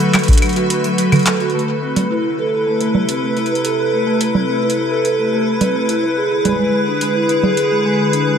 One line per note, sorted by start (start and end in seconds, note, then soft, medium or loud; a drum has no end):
0.00 1.50 D3 medium
0.00 0.05 F#3 loud
0.00 1.50 A3 medium
0.00 1.50 F#4 medium
0.00 1.50 A4 medium
0.00 1.53 B4 medium
0.00 closed hi-hat soft
0.14 clap loud
0.14 closed hi-hat soft
0.14 low conga medium
0.14 claves medium
0.19 closed hi-hat medium
0.24 closed hi-hat medium
0.28 0.37 D4 medium
0.28 kick loud
0.28 closed hi-hat medium
0.32 closed hi-hat soft
0.32 closed hi-hat medium
0.35 closed hi-hat soft
0.38 closed hi-hat medium
0.38 closed hi-hat soft
0.42 0.51 F#3 medium
0.42 closed hi-hat medium
0.42 claves medium
0.46 closed hi-hat soft
0.49 closed hi-hat soft
0.53 0.65 F#4 loud
0.53 closed hi-hat soft
0.56 closed hi-hat soft
0.70 closed hi-hat medium
0.84 0.97 F#3 medium
0.84 closed hi-hat soft
0.98 1.07 F#3 medium
0.98 closed hi-hat medium
1.12 1.21 F#3 medium
1.12 closed hi-hat soft
1.12 low conga loud
1.12 claves medium
1.16 closed hi-hat soft
1.19 closed hi-hat soft
1.23 clap loud
1.23 closed hi-hat soft
1.26 1.35 A4 medium
1.26 closed hi-hat medium
1.37 closed hi-hat soft
1.40 1.49 F#4 loud
1.40 closed hi-hat soft
1.50 closed hi-hat soft
1.54 5.99 C3 medium
1.54 1.60 A3 loud
1.54 8.38 E4 medium
1.54 5.99 A4 medium
1.54 8.38 B4 medium
1.59 closed hi-hat soft
1.82 1.91 C4 medium
1.96 2.05 A3 medium
1.96 closed hi-hat medium
1.96 low conga medium
2.10 2.19 E4 loud
2.39 2.47 A4 loud
2.53 2.65 A4 medium
2.67 2.75 A3 medium
2.81 2.86 A3 loud
2.81 closed hi-hat medium
2.95 low conga medium
3.09 3.17 C4 medium
3.09 closed hi-hat medium
3.23 3.31 A3 medium
3.37 3.45 E4 medium
3.37 closed hi-hat soft
3.46 closed hi-hat soft
3.55 closed hi-hat soft
3.65 3.73 A4 medium
3.65 closed hi-hat medium
3.79 3.91 A4 medium
3.93 4.01 A3 medium
4.07 4.12 A3 loud
4.21 closed hi-hat medium
4.35 4.43 C4 medium
4.35 low conga medium
4.49 4.57 A3 medium
4.63 4.71 E4 loud
4.70 closed hi-hat medium
4.91 4.99 A4 medium
5.05 5.18 A4 medium
5.05 closed hi-hat medium
5.19 5.27 A3 medium
5.33 5.38 A3 medium
5.61 5.69 C4 medium
5.61 closed hi-hat medium
5.61 low conga medium
5.75 5.83 A3 medium
5.89 5.97 E4 loud
5.89 closed hi-hat medium
6.03 8.38 D3 medium
6.03 8.38 G#4 medium
6.17 6.26 G#4 medium
6.31 6.44 G#4 medium
6.45 6.54 G#3 medium
6.45 closed hi-hat medium
6.45 low conga medium
6.49 low conga medium
6.52 low conga medium
6.56 low conga soft
6.59 6.64 G#3 loud
6.59 low conga soft
6.63 low conga soft
6.66 low conga soft
6.70 low conga soft
6.87 6.96 D4 medium
7.01 7.10 G#3 medium
7.01 closed hi-hat medium
7.15 7.24 E4 medium
7.29 closed hi-hat medium
7.43 7.52 G#4 loud
7.43 low conga medium
7.57 7.70 G#4 medium
7.57 closed hi-hat medium
7.71 7.80 G#3 medium
7.85 7.90 G#3 medium
8.13 8.22 D4 medium
8.13 closed hi-hat medium
8.27 8.36 G#3 medium